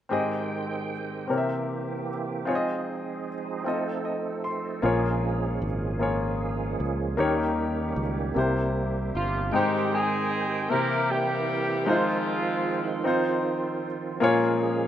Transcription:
0.09 1.25 G#2 soft
0.09 1.27 D#3 soft
0.09 1.27 G#3 soft
0.09 0.91 C4 medium
0.09 4.79 C4 soft
0.09 0.92 G4 medium
0.09 0.92 G#4 medium
0.09 0.93 D#5 medium
0.09 1.27 G5 soft
1.27 2.43 C3 soft
1.27 2.46 E3 soft
1.27 2.46 A#3 soft
1.27 2.09 C4 soft
1.27 2.10 G4 soft
1.27 2.46 G4 medium
1.27 2.11 A#4 soft
1.27 1.36 C#5 soft
1.38 2.14 E5 medium
2.45 7.15 F3 soft
2.45 3.64 G#3 soft
2.45 3.27 C4 medium
2.45 4.81 D#4 soft
2.45 3.28 F4 medium
2.45 3.28 G#4 medium
2.45 3.64 G#4 medium
2.45 2.54 C#5 medium
2.55 3.32 D#5 medium
3.64 4.82 A3 soft
3.64 4.46 C4 soft
3.64 4.46 F4 soft
3.64 4.47 A4 soft
3.64 4.82 A4 medium
3.64 4.03 D#5 medium
4.05 4.41 D#5 soft
4.44 4.80 C6 soft
4.82 5.58 A#1 medium
4.82 5.97 A#2 medium
4.82 7.16 G#3 soft
4.82 5.64 A#3 medium
4.82 9.49 A#3 soft
4.82 8.32 C#4 soft
4.82 5.64 F4 medium
4.82 7.16 G#4 medium
4.82 5.65 G#4 medium
4.82 5.65 C#5 medium
5.62 6.75 G#1 medium
5.99 6.81 A#3 medium
5.99 6.82 F4 soft
5.99 6.82 G#4 soft
5.99 6.83 C#5 medium
6.80 7.16 C#2 medium
7.17 7.93 D#2 medium
7.17 8.35 D#3 soft
7.17 8.32 D#3 medium
7.17 9.51 G3 soft
7.17 7.99 A#3 medium
7.17 7.99 D#4 medium
7.17 9.51 G4 medium
7.17 8.00 G4 medium
7.17 8.00 C#5 medium
7.96 8.33 C#2 medium
8.34 9.10 C2 medium
8.34 9.51 C3 soft
8.34 9.50 C3 soft
8.34 9.16 A#3 soft
8.34 9.51 C4 soft
8.34 9.17 E4 soft
8.34 9.17 G4 soft
8.38 9.18 C5 medium
9.15 9.51 G1 medium
9.15 9.51 F3 medium
9.15 9.51 F4 medium
9.15 9.55 F4 medium
9.51 10.67 G#2 medium
9.51 10.69 D#3 medium
9.51 10.69 G#3 soft
9.51 10.34 G#3 medium
9.51 13.00 C4 soft
9.51 10.34 D#4 medium
9.51 11.85 G5 medium
9.51 10.35 G5 medium
9.55 9.94 G3 medium
9.55 9.94 C4 medium
9.55 9.94 D#4 medium
9.55 9.94 G4 medium
9.55 9.95 G4 medium
9.55 10.35 C5 medium
9.94 10.71 G#3 medium
9.94 10.68 C4 medium
9.94 10.68 D#4 medium
9.94 10.71 G#4 medium
9.94 10.45 G#4 medium
10.45 10.68 G4 medium
10.69 11.84 C3 soft
10.69 11.86 E3 medium
10.69 11.51 A#3 soft
10.69 11.86 A#3 soft
10.69 11.10 A#3 medium
10.69 11.51 E4 soft
10.69 11.10 E4 medium
10.69 11.09 G4 medium
10.69 11.52 G4 soft
10.69 11.10 A#4 medium
10.69 11.11 A#4 medium
10.69 11.52 C5 medium
11.10 11.88 G3 medium
11.10 11.85 A#3 medium
11.10 11.85 E4 medium
11.10 11.88 G4 medium
11.10 11.91 G4 medium
11.86 14.19 D#3 medium
11.86 13.02 F3 medium
11.86 13.44 F3 medium
11.86 12.68 G#3 medium
11.86 13.03 G#3 soft
11.86 13.41 G#3 medium
11.86 13.41 C4 medium
11.86 12.68 D#4 medium
11.86 14.19 F4 medium
11.86 12.89 F4 medium
11.86 12.69 F4 medium
11.86 13.44 F4 medium
11.86 12.69 C5 medium
12.89 13.40 D#4 medium
13.03 14.88 F3 soft
13.03 14.20 C4 soft
13.03 13.85 C4 medium
13.03 13.85 D#4 medium
13.03 13.86 F4 medium
13.07 13.87 C5 medium
14.20 14.88 A#2 medium
14.20 14.88 G#3 medium
14.20 14.88 A#3 medium
14.20 14.88 C#4 soft
14.20 14.88 F4 medium
14.20 14.88 G#4 medium
14.20 14.88 C#5 medium

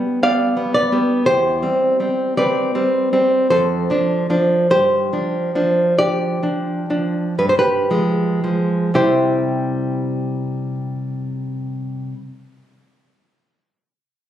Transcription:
0.00 0.19 G3 medium
0.00 0.20 B3 medium
0.00 0.19 D5 medium
0.00 0.19 G5 loud
0.23 0.54 G3 medium
0.23 0.54 B3 medium
0.23 0.71 D5 medium
0.23 0.72 F5 loud
0.57 0.88 G3 medium
0.57 0.88 B3 medium
0.74 1.25 B4 medium
0.74 1.25 D5 loud
0.92 1.24 G3 medium
0.92 1.24 B3 medium
1.26 1.62 E2 medium
1.26 2.33 G4 medium
1.26 2.33 C5 loud
1.63 1.96 G3 medium
1.63 1.96 C4 medium
2.00 2.34 G3 medium
2.00 2.34 C4 medium
2.37 2.71 G3 medium
2.37 2.71 C4 medium
2.37 3.47 B4 medium
2.37 3.46 D5 loud
2.75 3.09 G3 medium
2.75 3.09 C4 medium
3.13 3.47 G3 medium
3.13 3.47 C4 medium
3.50 3.88 F2 medium
3.50 4.67 A4 medium
3.50 4.66 C5 loud
3.90 4.26 F3 medium
3.90 4.26 D4 medium
4.30 4.66 F3 medium
4.30 4.66 D4 medium
4.70 5.11 G2 medium
4.70 5.94 G4 medium
4.70 5.94 C5 loud
5.13 5.51 F3 medium
5.13 5.51 D4 medium
5.55 5.94 F3 medium
5.55 5.94 D4 medium
5.98 6.39 F3 medium
5.98 6.39 D4 medium
5.98 7.35 G4 medium
5.98 7.34 D5 loud
6.43 6.85 F3 medium
6.43 6.85 D4 medium
6.90 7.34 F3 medium
6.90 7.34 D4 medium
7.39 7.88 G2 medium
7.39 7.48 B4 medium
7.49 7.58 C5 medium
7.59 8.91 G4 medium
7.59 8.91 B4 medium
7.90 8.40 F3 medium
7.90 8.40 G#3 medium
8.44 8.91 F3 medium
8.44 8.91 G#3 medium
8.94 12.13 C3 medium
8.94 12.13 G3 medium
8.94 12.13 E4 medium
8.94 12.14 G4 medium
8.94 12.14 C5 medium

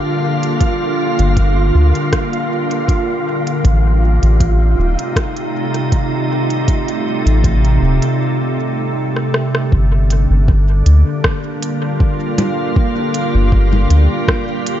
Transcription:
0.00 3.64 D3 medium
0.00 9.72 G3 medium
0.00 3.64 A#3 medium
0.00 4.97 F4 medium
0.00 8.20 F4 medium
0.00 9.72 G4 medium
0.00 8.21 F5 medium
0.43 closed hi-hat soft
0.61 kick medium
0.61 closed hi-hat soft
1.19 1.71 G1 loud
1.19 closed hi-hat soft
1.37 kick loud
1.37 closed hi-hat soft
1.75 1.93 D2 medium
1.95 closed hi-hat soft
2.13 kick loud
2.13 cross-stick medium
2.13 closed hi-hat soft
2.33 closed hi-hat soft
2.71 closed hi-hat soft
2.88 kick loud
2.88 closed hi-hat soft
3.47 closed hi-hat soft
3.64 4.19 A1 loud
3.64 9.72 C3 medium
3.64 kick medium
3.64 closed hi-hat medium
4.17 9.72 D#4 medium
4.23 4.75 A1 loud
4.23 closed hi-hat soft
4.40 9.73 A3 medium
4.40 kick medium
4.40 closed hi-hat medium
4.78 4.96 D#1 medium
4.99 closed hi-hat soft
5.16 kick loud
5.16 cross-stick medium
5.16 closed hi-hat medium
5.37 closed hi-hat soft
5.74 closed hi-hat soft
5.92 kick loud
5.92 closed hi-hat soft
6.50 closed hi-hat soft
6.68 kick loud
6.68 closed hi-hat medium
6.88 closed hi-hat soft
7.26 7.79 A1 loud
7.26 closed hi-hat soft
7.44 kick medium
7.44 closed hi-hat medium
7.65 closed hi-hat soft
7.82 8.00 D#1 medium
8.02 closed hi-hat soft
9.16 cross-stick soft
9.34 cross-stick medium
9.55 cross-stick medium
9.72 10.27 G1 loud
9.72 14.80 D3 medium
9.72 kick loud
10.10 closed hi-hat medium
10.30 10.83 G1 loud
10.35 14.80 G3 medium
10.48 14.80 A#3 medium
10.48 kick loud
10.86 11.04 D2 medium
10.86 closed hi-hat medium
11.20 14.80 F4 medium
11.24 kick loud
11.24 cross-stick loud
11.61 14.80 G4 medium
11.61 closed hi-hat medium
12.00 kick loud
12.38 closed hi-hat medium
12.38 low conga medium
12.76 kick loud
13.14 closed hi-hat medium
13.35 13.87 G1 loud
13.52 kick loud
13.73 low conga medium
13.90 14.08 D2 medium
13.90 closed hi-hat medium
14.28 kick loud
14.28 cross-stick loud
14.66 closed hi-hat medium

